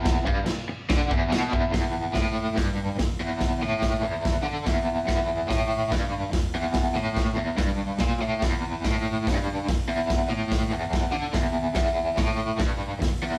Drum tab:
CC |x-x-x-x-|--------|--------|--------|
HH |--------|o-o-o-o-|o-o-o-o-|o-o-o-o-|
SD |o-o-o-o-|o-o-o-o-|o-o-o-o-|o-o-o-o-|
BD |oo--oo-o|o-o-o-o-|o-o-o-o-|o-o-o-o-|

CC |--------|--------|--------|--------|
HH |o-o-o-o-|o-o-o-o-|o-o-o-o-|o-o-o-o-|
SD |o-o-o-o-|o-o-o-o-|o-o-o-o-|o-o-o-o-|
BD |o-o-o-o-|o-o-o-o-|o-o-o-o-|o-o-o-o-|